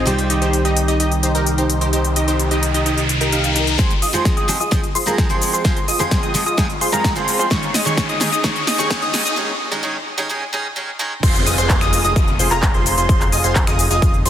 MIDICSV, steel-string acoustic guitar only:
0, 0, Header, 1, 2, 480
1, 0, Start_track
1, 0, Key_signature, -4, "minor"
1, 0, Tempo, 465116
1, 71, Time_signature, 4, 2, 24, 8
1, 14753, End_track
2, 0, Start_track
2, 0, Title_t, "Steel-string acoustic guitar"
2, 0, Program_c, 0, 25
2, 56, Note_on_c, 0, 51, 70
2, 64, Note_on_c, 0, 55, 63
2, 72, Note_on_c, 0, 60, 65
2, 81, Note_on_c, 0, 67, 79
2, 3875, Note_off_c, 0, 51, 0
2, 3879, Note_off_c, 0, 55, 0
2, 3883, Note_off_c, 0, 60, 0
2, 3887, Note_off_c, 0, 67, 0
2, 3902, Note_on_c, 0, 53, 71
2, 3910, Note_on_c, 0, 56, 66
2, 3911, Note_on_c, 0, 60, 69
2, 3915, Note_on_c, 0, 68, 86
2, 4039, Note_off_c, 0, 53, 0
2, 4041, Note_off_c, 0, 56, 0
2, 4043, Note_off_c, 0, 60, 0
2, 4045, Note_off_c, 0, 68, 0
2, 4261, Note_on_c, 0, 53, 85
2, 4264, Note_on_c, 0, 56, 78
2, 4271, Note_on_c, 0, 60, 62
2, 4274, Note_on_c, 0, 68, 93
2, 4597, Note_off_c, 0, 53, 0
2, 4599, Note_off_c, 0, 56, 0
2, 4601, Note_off_c, 0, 60, 0
2, 4604, Note_off_c, 0, 68, 0
2, 4621, Note_on_c, 0, 53, 99
2, 4629, Note_on_c, 0, 56, 83
2, 4630, Note_on_c, 0, 60, 90
2, 4635, Note_on_c, 0, 68, 105
2, 4709, Note_off_c, 0, 53, 0
2, 4711, Note_off_c, 0, 56, 0
2, 4713, Note_off_c, 0, 60, 0
2, 4716, Note_off_c, 0, 68, 0
2, 4862, Note_on_c, 0, 53, 91
2, 4865, Note_on_c, 0, 56, 86
2, 4873, Note_on_c, 0, 60, 71
2, 4874, Note_on_c, 0, 68, 100
2, 4949, Note_off_c, 0, 53, 0
2, 4951, Note_off_c, 0, 56, 0
2, 4953, Note_off_c, 0, 60, 0
2, 4955, Note_off_c, 0, 68, 0
2, 5221, Note_on_c, 0, 53, 81
2, 5226, Note_on_c, 0, 56, 73
2, 5230, Note_on_c, 0, 60, 78
2, 5235, Note_on_c, 0, 68, 91
2, 5438, Note_off_c, 0, 53, 0
2, 5440, Note_off_c, 0, 56, 0
2, 5442, Note_off_c, 0, 60, 0
2, 5444, Note_off_c, 0, 68, 0
2, 5462, Note_on_c, 0, 53, 69
2, 5467, Note_on_c, 0, 56, 70
2, 5468, Note_on_c, 0, 60, 67
2, 5477, Note_on_c, 0, 68, 71
2, 5798, Note_off_c, 0, 53, 0
2, 5800, Note_off_c, 0, 56, 0
2, 5802, Note_off_c, 0, 60, 0
2, 5804, Note_off_c, 0, 68, 0
2, 5824, Note_on_c, 0, 53, 75
2, 5830, Note_on_c, 0, 56, 56
2, 5831, Note_on_c, 0, 60, 70
2, 5836, Note_on_c, 0, 68, 87
2, 5960, Note_off_c, 0, 53, 0
2, 5962, Note_off_c, 0, 56, 0
2, 5963, Note_off_c, 0, 60, 0
2, 5966, Note_off_c, 0, 68, 0
2, 6183, Note_on_c, 0, 53, 83
2, 6186, Note_on_c, 0, 56, 73
2, 6194, Note_on_c, 0, 60, 71
2, 6196, Note_on_c, 0, 68, 91
2, 6518, Note_off_c, 0, 53, 0
2, 6521, Note_off_c, 0, 56, 0
2, 6523, Note_off_c, 0, 60, 0
2, 6525, Note_off_c, 0, 68, 0
2, 6542, Note_on_c, 0, 53, 94
2, 6550, Note_on_c, 0, 56, 85
2, 6551, Note_on_c, 0, 60, 91
2, 6560, Note_on_c, 0, 68, 90
2, 6630, Note_off_c, 0, 53, 0
2, 6632, Note_off_c, 0, 56, 0
2, 6634, Note_off_c, 0, 60, 0
2, 6636, Note_off_c, 0, 68, 0
2, 6784, Note_on_c, 0, 53, 98
2, 6787, Note_on_c, 0, 56, 83
2, 6796, Note_on_c, 0, 60, 75
2, 6797, Note_on_c, 0, 68, 105
2, 6870, Note_off_c, 0, 53, 0
2, 6873, Note_off_c, 0, 56, 0
2, 6874, Note_off_c, 0, 60, 0
2, 6877, Note_off_c, 0, 68, 0
2, 7144, Note_on_c, 0, 53, 89
2, 7147, Note_on_c, 0, 56, 71
2, 7157, Note_on_c, 0, 68, 92
2, 7158, Note_on_c, 0, 60, 76
2, 7359, Note_off_c, 0, 53, 0
2, 7361, Note_off_c, 0, 56, 0
2, 7363, Note_off_c, 0, 60, 0
2, 7365, Note_off_c, 0, 68, 0
2, 7383, Note_on_c, 0, 53, 76
2, 7387, Note_on_c, 0, 56, 66
2, 7391, Note_on_c, 0, 60, 72
2, 7396, Note_on_c, 0, 68, 83
2, 7718, Note_off_c, 0, 53, 0
2, 7720, Note_off_c, 0, 56, 0
2, 7723, Note_off_c, 0, 60, 0
2, 7725, Note_off_c, 0, 68, 0
2, 7742, Note_on_c, 0, 51, 76
2, 7747, Note_on_c, 0, 56, 66
2, 7751, Note_on_c, 0, 61, 65
2, 7755, Note_on_c, 0, 68, 78
2, 7879, Note_off_c, 0, 51, 0
2, 7881, Note_off_c, 0, 56, 0
2, 7883, Note_off_c, 0, 61, 0
2, 7885, Note_off_c, 0, 68, 0
2, 8102, Note_on_c, 0, 51, 75
2, 8110, Note_on_c, 0, 56, 64
2, 8111, Note_on_c, 0, 61, 70
2, 8119, Note_on_c, 0, 68, 70
2, 8438, Note_off_c, 0, 51, 0
2, 8441, Note_off_c, 0, 56, 0
2, 8443, Note_off_c, 0, 61, 0
2, 8445, Note_off_c, 0, 68, 0
2, 8461, Note_on_c, 0, 51, 91
2, 8467, Note_on_c, 0, 56, 66
2, 8469, Note_on_c, 0, 61, 85
2, 8473, Note_on_c, 0, 68, 98
2, 8549, Note_off_c, 0, 51, 0
2, 8550, Note_off_c, 0, 56, 0
2, 8553, Note_off_c, 0, 61, 0
2, 8555, Note_off_c, 0, 68, 0
2, 8704, Note_on_c, 0, 51, 77
2, 8708, Note_on_c, 0, 56, 70
2, 8713, Note_on_c, 0, 61, 70
2, 8717, Note_on_c, 0, 68, 88
2, 8840, Note_off_c, 0, 51, 0
2, 8842, Note_off_c, 0, 56, 0
2, 8844, Note_off_c, 0, 61, 0
2, 8846, Note_off_c, 0, 68, 0
2, 9063, Note_on_c, 0, 51, 89
2, 9067, Note_on_c, 0, 56, 81
2, 9076, Note_on_c, 0, 61, 68
2, 9076, Note_on_c, 0, 68, 96
2, 9398, Note_off_c, 0, 51, 0
2, 9401, Note_off_c, 0, 56, 0
2, 9402, Note_off_c, 0, 61, 0
2, 9405, Note_off_c, 0, 68, 0
2, 9423, Note_on_c, 0, 51, 93
2, 9430, Note_on_c, 0, 61, 87
2, 9431, Note_on_c, 0, 56, 79
2, 9438, Note_on_c, 0, 68, 97
2, 9510, Note_off_c, 0, 51, 0
2, 9512, Note_off_c, 0, 56, 0
2, 9514, Note_off_c, 0, 61, 0
2, 9516, Note_off_c, 0, 68, 0
2, 9663, Note_on_c, 0, 51, 83
2, 9671, Note_on_c, 0, 61, 79
2, 9673, Note_on_c, 0, 56, 59
2, 9681, Note_on_c, 0, 68, 76
2, 9800, Note_off_c, 0, 51, 0
2, 9802, Note_off_c, 0, 56, 0
2, 9804, Note_off_c, 0, 61, 0
2, 9806, Note_off_c, 0, 68, 0
2, 10025, Note_on_c, 0, 51, 84
2, 10028, Note_on_c, 0, 56, 79
2, 10038, Note_on_c, 0, 61, 68
2, 10038, Note_on_c, 0, 68, 93
2, 10129, Note_off_c, 0, 51, 0
2, 10131, Note_off_c, 0, 56, 0
2, 10133, Note_off_c, 0, 61, 0
2, 10135, Note_off_c, 0, 68, 0
2, 10142, Note_on_c, 0, 51, 80
2, 10151, Note_on_c, 0, 56, 69
2, 10151, Note_on_c, 0, 61, 78
2, 10160, Note_on_c, 0, 68, 72
2, 10280, Note_off_c, 0, 51, 0
2, 10282, Note_off_c, 0, 56, 0
2, 10284, Note_off_c, 0, 61, 0
2, 10286, Note_off_c, 0, 68, 0
2, 10502, Note_on_c, 0, 51, 93
2, 10504, Note_on_c, 0, 56, 84
2, 10513, Note_on_c, 0, 61, 72
2, 10515, Note_on_c, 0, 68, 107
2, 10607, Note_off_c, 0, 51, 0
2, 10610, Note_off_c, 0, 56, 0
2, 10612, Note_off_c, 0, 61, 0
2, 10614, Note_off_c, 0, 68, 0
2, 10624, Note_on_c, 0, 51, 86
2, 10628, Note_on_c, 0, 56, 78
2, 10633, Note_on_c, 0, 61, 80
2, 10637, Note_on_c, 0, 68, 95
2, 10760, Note_off_c, 0, 51, 0
2, 10762, Note_off_c, 0, 56, 0
2, 10764, Note_off_c, 0, 61, 0
2, 10766, Note_off_c, 0, 68, 0
2, 10864, Note_on_c, 0, 51, 88
2, 10873, Note_on_c, 0, 56, 68
2, 10873, Note_on_c, 0, 61, 82
2, 10877, Note_on_c, 0, 68, 97
2, 11000, Note_off_c, 0, 51, 0
2, 11002, Note_off_c, 0, 56, 0
2, 11004, Note_off_c, 0, 61, 0
2, 11006, Note_off_c, 0, 68, 0
2, 11103, Note_on_c, 0, 51, 83
2, 11112, Note_on_c, 0, 56, 64
2, 11112, Note_on_c, 0, 61, 73
2, 11120, Note_on_c, 0, 68, 78
2, 11240, Note_off_c, 0, 51, 0
2, 11242, Note_off_c, 0, 56, 0
2, 11244, Note_off_c, 0, 61, 0
2, 11246, Note_off_c, 0, 68, 0
2, 11344, Note_on_c, 0, 51, 93
2, 11348, Note_on_c, 0, 56, 77
2, 11351, Note_on_c, 0, 61, 86
2, 11361, Note_on_c, 0, 68, 84
2, 11480, Note_off_c, 0, 51, 0
2, 11482, Note_off_c, 0, 56, 0
2, 11484, Note_off_c, 0, 61, 0
2, 11486, Note_off_c, 0, 68, 0
2, 14753, End_track
0, 0, End_of_file